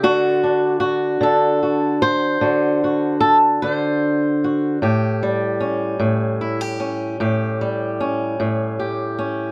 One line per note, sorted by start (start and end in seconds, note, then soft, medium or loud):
0.00 1.19 D3 medium
0.00 0.43 A3 soft
0.00 0.79 F#4 loud
0.44 4.77 D4 soft
0.80 1.61 F#4 medium
1.21 2.40 D3 medium
1.21 2.02 A4 medium
1.63 2.41 F#4 soft
2.02 3.20 C5 loud
2.41 3.62 D3 medium
2.41 2.82 F#4 soft
2.84 4.43 F#4 soft
3.20 3.36 A4 medium
3.62 4.82 D3 medium
3.62 4.82 C5 medium
4.44 4.78 F#4 soft
4.82 5.99 A2 medium
4.82 6.41 G4 medium
5.23 7.60 G3 medium
5.60 6.79 C#4 medium
5.99 7.20 A2 medium
6.41 6.61 E4 medium
6.61 7.19 G4 medium
6.80 7.99 C#4 medium
7.20 8.38 A2 medium
7.20 8.78 G4 medium
7.61 9.52 G3 medium
8.00 9.17 C#4 medium
8.40 9.52 A2 medium
8.79 9.52 G4 medium
9.19 9.52 C#4 medium